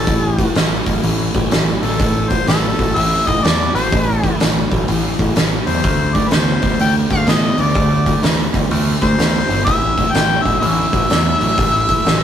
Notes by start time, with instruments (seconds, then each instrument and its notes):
Already playing: harmonica A4
0.07 picked electric bass A1, overdriven electric guitar A2 E3, kick, open hi-hat
0.39 overdriven electric guitar A2 E3, kick, open hi-hat
0.55 picked electric bass A1, overdriven electric guitar A2 F#3, snare, open hi-hat
0.86 picked electric bass A1, overdriven electric guitar A2 F#3, kick, open hi-hat
1.03 picked electric bass A1, overdriven electric guitar A2 E3, open hi-hat
1.34 picked electric bass A1, overdriven electric guitar A2 E3, kick, open hi-hat
1.51 picked electric bass A1, overdriven electric guitar A2 F#3, snare, open hi-hat
1.82 picked electric bass A1, overdriven electric guitar A2 F#3, harmonica A4, open hi-hat
1.99 picked electric bass A1, overdriven electric guitar A2 E3, kick, open hi-hat
2.30 overdriven electric guitar A2 E3, harmonica C5, kick, open hi-hat
2.47 picked electric bass A1, overdriven electric guitar A2 F#3, harmonica A4, snare, open hi-hat
2.79 picked electric bass A1, overdriven electric guitar A2 F#3, kick, open hi-hat
2.95 picked electric bass A1, overdriven electric guitar A2 E3, harmonica E5, open hi-hat
3.27 picked electric bass A1, overdriven electric guitar A2 E3, harmonica D#5, kick, open hi-hat
3.44 picked electric bass E2, overdriven electric guitar A2 F#3, harmonica D5, snare, open hi-hat
3.74 picked electric bass A1, overdriven electric guitar A2 F#3, harmonica C5, open hi-hat
3.92 picked electric bass A1, overdriven electric guitar A2 E3, kick, open hi-hat
4.23 overdriven electric guitar A2 E3, kick, open hi-hat
4.40 picked electric bass A1, overdriven electric guitar A2 F#3, snare, open hi-hat
4.71 picked electric bass A1, overdriven electric guitar A2 F#3, kick, open hi-hat
4.88 picked electric bass A1, overdriven electric guitar A2 E3, open hi-hat
5.19 picked electric bass A1, overdriven electric guitar A2 E3, kick, open hi-hat
5.36 picked electric bass A1, overdriven electric guitar A2 F#3, snare, open hi-hat
5.67 picked electric bass E2, overdriven electric guitar A2 F#3, harmonica C5, open hi-hat
5.83 picked electric bass D2, overdriven electric guitar D3 A3, kick, open hi-hat
6.15 overdriven electric guitar D3 A3, harmonica D5, kick, open hi-hat
6.28 overdriven electric guitar D3, harmonica B4, open hi-hat
6.32 picked electric bass D2, overdriven electric guitar B3, harmonica C5, snare
6.62 picked electric bass D2, overdriven electric guitar D3 B3, kick, open hi-hat
6.79 picked electric bass D2, overdriven electric guitar D3 A3, harmonica G5, open hi-hat
7.10 picked electric bass D2, overdriven electric guitar D3 A3, harmonica F5, kick, open hi-hat
7.27 picked electric bass A2, overdriven electric guitar D3 B3, harmonica D#5, snare, open hi-hat
7.58 picked electric bass D2, overdriven electric guitar D3 B3, harmonica D5, open hi-hat
7.74 picked electric bass D2, overdriven electric guitar D3 A3, kick, open hi-hat
8.06 overdriven electric guitar D3 A3, kick, open hi-hat
8.22 picked electric bass D2, overdriven electric guitar D3 B3, snare, open hi-hat
8.53 picked electric bass D2, overdriven electric guitar D3 B3, kick, open hi-hat
8.70 picked electric bass D2, overdriven electric guitar D3 A3, open hi-hat
9.02 picked electric bass D2, overdriven electric guitar D3 A3, harmonica C5, kick, open hi-hat
9.18 picked electric bass D2, overdriven electric guitar D3 B3, snare, open hi-hat
9.49 picked electric bass G1, overdriven electric guitar D3 B3, open hi-hat
9.65 picked electric bass A1, overdriven electric guitar A2 E3, harmonica E5, kick, open hi-hat
9.97 overdriven electric guitar A2 E3, kick, open hi-hat
10.12 picked electric bass A1, overdriven electric guitar A2 F#3, harmonica G5, snare, open hi-hat
10.42 picked electric bass A1, overdriven electric guitar A2, harmonica E5, kick, open hi-hat
10.47 overdriven electric guitar F#3
10.60 picked electric bass A1, overdriven electric guitar A2 E3, harmonica E5, open hi-hat
10.92 picked electric bass A1, overdriven electric guitar A2 E3, kick, open hi-hat
11.10 picked electric bass E2, overdriven electric guitar A2 F#3, snare, open hi-hat
11.40 picked electric bass A1, overdriven electric guitar A2 F#3, open hi-hat
11.58 picked electric bass A1, overdriven electric guitar A2 E3, kick, open hi-hat
11.89 overdriven electric guitar A2 E3, kick, open hi-hat
12.05 picked electric bass A1, overdriven electric guitar A2 F#3, snare, open hi-hat